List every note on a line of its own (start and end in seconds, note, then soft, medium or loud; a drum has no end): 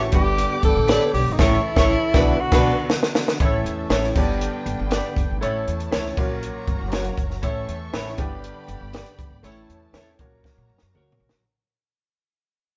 0.00 0.12 E3 medium
0.00 0.11 C#4 medium
0.00 0.13 C#4 medium
0.00 0.13 E4 medium
0.00 0.14 F#4 medium
0.00 0.11 A4 medium
0.00 0.11 C#5 medium
0.00 0.11 C#6 loud
0.11 0.43 G1 loud
0.11 0.85 G2 medium
0.11 1.37 D3 medium
0.11 1.37 B3 medium
0.11 0.73 D4 medium
0.11 1.37 G4 medium
0.11 0.74 G4 medium
0.11 0.61 G4 loud
0.11 0.74 B4 medium
0.11 1.37 D5 medium
0.11 1.36 D6 loud
0.11 kick medium
0.11 closed hi-hat medium
0.38 closed hi-hat loud
0.63 0.73 G1 medium
0.63 0.87 A4 loud
0.63 kick medium
0.63 closed hi-hat medium
0.76 0.96 A1 loud
0.87 1.17 D4 medium
0.87 1.01 G4 medium
0.87 1.18 G4 medium
0.87 1.13 A4 loud
0.87 1.02 B4 medium
0.87 1.18 C#5 medium
0.87 1.02 D5 loud
0.87 snare loud
0.87 closed hi-hat medium
1.01 closed hi-hat medium
1.14 1.24 B1 medium
1.14 1.34 G4 medium
1.14 open hi-hat medium
1.26 1.36 G#1 medium
1.32 1.41 D#4 medium
1.38 1.56 A1 loud
1.38 1.56 A2 loud
1.38 2.13 E3 medium
1.38 2.13 C#4 medium
1.38 1.56 C#4 medium
1.38 1.56 E4 loud
1.38 2.42 E4 loud
1.38 2.13 A4 medium
1.38 1.57 A4 loud
1.38 1.57 A4 medium
1.38 1.56 C#5 loud
1.38 1.57 C#5 loud
1.38 1.56 C#6 medium
1.38 kick loud
1.38 snare loud
1.38 crash medium
1.76 1.94 A1 loud
1.76 1.93 C#4 loud
1.76 1.93 E4 loud
1.76 1.94 E4 loud
1.76 1.94 A4 loud
1.76 1.94 A4 medium
1.76 1.94 C#5 loud
1.76 1.95 C#5 loud
1.76 1.94 C#6 loud
1.76 kick loud
1.76 snare loud
2.13 2.31 B1 loud
2.13 2.31 B2 loud
2.13 3.38 D3 medium
2.13 3.38 B3 medium
2.13 2.31 D4 loud
2.13 3.38 F#4 medium
2.13 2.32 F#4 medium
2.13 2.32 F#4 loud
2.13 2.31 B4 loud
2.13 2.32 B4 loud
2.13 2.32 B5 loud
2.13 kick loud
2.13 snare loud
2.20 2.35 D4 medium
2.40 2.90 F#4 medium
2.51 2.69 B1 loud
2.51 2.70 B2 loud
2.51 2.69 D4 loud
2.51 2.70 F#4 loud
2.51 2.69 B4 loud
2.51 2.70 B4 loud
2.51 2.70 B4 medium
2.51 2.69 B5 medium
2.51 kick loud
2.51 snare loud
2.51 crash medium
2.58 2.73 D4 loud
2.90 snare loud
3.03 snare medium
3.15 snare loud
3.28 snare medium
3.40 3.60 A1 loud
3.40 4.12 A2 medium
3.40 4.15 E3 medium
3.40 3.69 A3 medium
3.40 4.14 C#4 medium
3.40 4.15 C#4 medium
3.40 3.69 C#4 medium
3.40 3.76 E4 medium
3.40 3.70 E4 medium
3.40 4.15 A4 medium
3.40 4.14 A4 medium
3.40 3.76 A4 loud
3.40 3.76 C#5 loud
3.40 3.70 C#5 loud
3.40 4.14 E5 medium
3.40 kick loud
3.40 closed hi-hat medium
3.64 3.85 E2 medium
3.64 closed hi-hat medium
3.90 4.10 A1 medium
3.90 4.16 A3 medium
3.90 4.16 C#4 medium
3.90 4.04 E4 medium
3.90 4.16 E4 medium
3.90 4.04 A4 medium
3.90 4.16 C#5 loud
3.90 4.05 C#5 medium
3.90 snare loud
3.90 closed hi-hat medium
4.04 snare soft
4.15 4.46 G1 medium
4.15 4.88 G2 medium
4.15 5.40 D3 medium
4.15 5.40 B3 medium
4.15 4.76 B3 medium
4.15 5.38 D4 medium
4.15 4.76 D4 medium
4.15 5.40 G4 medium
4.15 4.77 G4 medium
4.15 5.38 B4 medium
4.15 4.77 D5 loud
4.15 5.38 G5 medium
4.15 kick loud
4.15 crash medium
4.41 closed hi-hat medium
4.66 4.76 F#1 loud
4.66 closed hi-hat medium
4.79 4.99 G1 medium
4.90 5.20 B3 medium
4.90 5.20 D4 medium
4.90 5.05 G4 medium
4.90 5.20 G4 medium
4.90 5.05 B4 medium
4.90 5.21 D5 medium
4.90 5.05 D5 medium
4.90 snare loud
4.90 closed hi-hat medium
5.16 5.27 F#1 medium
5.16 kick medium
5.16 closed hi-hat medium
5.30 5.40 G#1 medium
5.41 5.62 A1 loud
5.41 6.14 A2 medium
5.41 6.17 E3 medium
5.41 5.71 A3 loud
5.41 5.71 C#4 medium
5.41 8.16 C#4 medium
5.41 5.77 E4 loud
5.41 6.16 E4 medium
5.41 5.71 E4 medium
5.41 5.77 A4 loud
5.41 6.17 A4 medium
5.41 5.77 C#5 loud
5.41 6.16 C#5 medium
5.41 5.72 C#5 loud
5.41 6.16 A5 medium
5.41 closed hi-hat medium
5.68 5.87 E2 medium
5.68 closed hi-hat medium
5.80 closed hi-hat medium
5.91 6.13 C#2 medium
5.91 6.17 A3 medium
5.91 6.16 C#4 medium
5.91 6.05 E4 medium
5.91 6.17 E4 medium
5.91 6.06 A4 medium
5.91 6.17 C#5 loud
5.91 6.06 C#5 medium
5.91 snare loud
5.91 closed hi-hat medium
6.05 snare soft
6.17 6.48 A#1 medium
6.17 6.89 A#2 medium
6.17 7.43 F#3 medium
6.17 6.77 A#3 medium
6.17 6.78 C#4 medium
6.17 6.78 F#4 medium
6.17 7.41 F#4 medium
6.17 7.42 A#4 medium
6.17 6.78 C#5 loud
6.17 7.41 C#5 medium
6.17 7.41 A#5 loud
6.17 kick loud
6.17 crash medium
6.43 closed hi-hat medium
6.67 6.78 G1 medium
6.67 kick loud
6.67 closed hi-hat medium
6.81 7.11 F#1 medium
6.92 7.21 A#3 medium
6.92 7.22 C#4 medium
6.92 7.06 F#4 medium
6.92 7.22 F#4 medium
6.92 7.06 A#4 medium
6.92 7.06 C#5 medium
6.92 7.22 C#5 loud
6.92 snare loud
6.92 closed hi-hat medium
7.05 closed hi-hat medium
7.17 7.38 F#1 medium
7.17 kick loud
7.17 closed hi-hat medium
7.30 snare soft
7.42 7.63 A1 loud
7.42 8.15 A2 medium
7.42 8.18 E3 soft
7.42 7.72 A3 medium
7.42 7.72 C#4 medium
7.42 7.79 E4 loud
7.42 7.72 E4 medium
7.42 7.79 A4 loud
7.42 8.17 A4 medium
7.42 8.18 A4 medium
7.42 7.79 C#5 loud
7.42 7.73 C#5 loud
7.42 8.17 E5 medium
7.42 8.17 C#6 medium
7.42 kick medium
7.42 closed hi-hat medium
7.68 7.89 E2 medium
7.68 closed hi-hat medium
7.93 8.14 A1 medium
7.93 8.18 A3 loud
7.93 8.19 C#4 medium
7.93 8.07 E4 medium
7.93 8.19 E4 medium
7.93 8.07 A4 medium
7.93 8.19 B4 loud
7.93 8.07 C#5 medium
7.93 snare loud
7.93 closed hi-hat medium
8.07 snare soft
8.17 8.49 G1 medium
8.17 8.90 G2 medium
8.17 9.44 D3 medium
8.17 8.78 B3 loud
8.17 9.44 B3 medium
8.17 8.79 D4 medium
8.17 9.43 G4 medium
8.17 8.79 G4 medium
8.17 9.42 G4 medium
8.17 8.79 D5 medium
8.17 9.43 D5 medium
8.17 9.43 B5 loud
8.17 kick loud
8.17 closed hi-hat medium
8.44 closed hi-hat medium
8.68 8.79 F#1 medium
8.68 closed hi-hat medium
8.81 9.01 G1 medium
8.93 9.23 B3 medium
8.93 9.23 D4 medium
8.93 9.07 G4 medium
8.93 9.23 G4 medium
8.93 9.07 B4 medium
8.93 9.23 D5 medium
8.93 9.08 D5 medium
8.93 snare loud
8.93 closed hi-hat medium
9.06 closed hi-hat medium
9.19 9.29 F#1 medium
9.19 kick medium
9.19 closed hi-hat medium
9.30 9.41 G#1 medium
9.43 9.64 A1 loud
9.43 10.16 A2 medium
9.43 10.19 E3 medium
9.43 9.73 A3 medium
9.43 11.44 C#4 soft
9.43 9.73 C#4 medium
9.43 9.74 E4 medium
9.43 10.19 E4 medium
9.43 9.80 E4 loud
9.43 10.19 A4 medium
9.43 9.80 A4 loud
9.43 10.19 C#5 medium
9.43 9.81 C#5 loud
9.43 9.74 C#5 loud
9.43 10.19 A5 medium
9.43 closed hi-hat medium
9.69 9.90 E2 medium
9.69 closed hi-hat medium
9.93 10.14 E2 loud
9.93 10.19 A3 medium
9.93 10.18 C#4 medium
9.93 10.20 E4 medium
9.93 10.08 E4 medium
9.93 10.09 A4 loud
9.93 10.19 C#5 medium
9.93 10.09 C#5 medium
9.93 snare loud
9.93 closed hi-hat medium
10.19 10.40 A#1 loud
10.19 10.92 A#2 medium
10.19 11.45 F#3 medium
10.19 10.80 A#3 medium
10.19 10.80 C#4 medium
10.19 11.44 F#4 medium
10.19 10.81 F#4 medium
10.19 11.45 A#4 medium
10.19 11.44 C#5 medium
10.19 10.81 C#5 loud
10.19 11.44 A#5 loud
10.19 kick medium
10.19 closed hi-hat medium
10.44 kick medium
10.44 snare medium
10.58 10.68 A#2 loud
10.70 10.80 F#2 medium
10.78 10.93 F#2 medium
10.78 snare medium
10.94 11.05 C#2 loud
10.94 11.24 A#3 medium
10.94 11.25 C#4 medium
10.94 11.25 F#4 medium
10.94 11.09 F#4 medium
10.94 11.25 A#4 medium
10.94 11.09 A#4 medium
10.94 11.10 C#5 medium
10.94 mid tom medium
11.12 floor tom medium
11.20 11.31 A#1 medium
11.29 snare medium